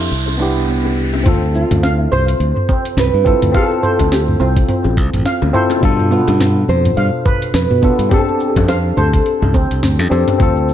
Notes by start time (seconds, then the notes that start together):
Already playing: C4 D4 E4 G4 A4 C5, riser
0.11 C2
0.28 high bongo
0.37 B3 D4 E4
0.42 G4
0.69 B3
0.85 high bongo
1.13 high bongo
1.24 D2 C4 F4, kick, mid tom, open hi-hat, shaker
1.28 A4
1.43 shaker
1.55 F4, shaker
1.71 D2, mid tom, open hi-hat, high bongo, shaker
1.83 F5, snare, open hi-hat, shaker
1.97 E4
2.12 C2 C5, mid tom, shaker
2.28 open hi-hat, shaker
2.40 D2, open hi-hat, shaker
2.57 mid tom
2.69 C4, kick, shaker
2.85 open hi-hat, shaker
2.97 C2 C4 B4, snare, mid tom, open hi-hat, shaker
3.14 G2
3.25 C4 E4 F4 A4, kick, shaker
3.42 D2, mid tom, open hi-hat, shaker
3.52 C4 F4 F5, kick, open hi-hat, shaker
3.56 A4
3.71 shaker
3.83 C5, mid tom, shaker
3.99 D2, kick, open hi-hat, high bongo, shaker
4.12 G4, snare, open hi-hat, shaker
4.28 mid tom
4.40 C2 C4 F4, shaker
4.56 kick, open hi-hat, shaker
4.69 C4, mid tom, open hi-hat, shaker
4.84 A1, high bongo
4.97 C2, kick, shaker
5.14 A1, mid tom, open hi-hat, shaker
5.26 F5, snare, open hi-hat, shaker
5.42 D2, high bongo
5.53 C4 E4 F4 A4 C5, mid tom, shaker
5.70 open hi-hat, high bongo, shaker
5.81 G2 B2 D4 F4, kick, open hi-hat, shaker
5.85 A4
5.99 mid tom, shaker
6.11 B3 F4, shaker
6.28 G2, open hi-hat, high bongo, shaker
6.40 B3, snare, mid tom, open hi-hat, shaker
6.69 F2 C5, shaker
6.85 mid tom, open hi-hat, shaker
6.97 G2 F5, open hi-hat, shaker
7.26 B4, kick, mid tom, shaker
7.42 open hi-hat, shaker
7.54 F2 B4, snare, open hi-hat, shaker
7.70 B2, mid tom
7.82 B3 D4 F4 A4, kick, shaker
7.99 G2, open hi-hat, shaker
8.09 C4 D4 G4 A4, kick, mid tom, open hi-hat, shaker
8.14 A4
8.28 shaker
8.40 shaker
8.52 F2 G4, kick, mid tom, open hi-hat, shaker
8.57 high bongo
8.68 C5 F5, snare, open hi-hat, shaker
8.97 D2 A4 C5, mid tom, shaker
9.13 kick, open hi-hat, shaker
9.26 open hi-hat, shaker
9.42 C2, mid tom, high bongo
9.54 D2 C4, kick, shaker
9.71 C2, open hi-hat, shaker
9.83 D2 C4, snare, mid tom, open hi-hat, shaker
9.99 F2, high bongo
10.10 F2 C4 D4 G4 A4 C5, shaker
10.28 mid tom, open hi-hat, high bongo, shaker
10.38 D2 C4 F4, kick, mid tom, open hi-hat, shaker
10.43 A4
10.56 shaker
10.69 shaker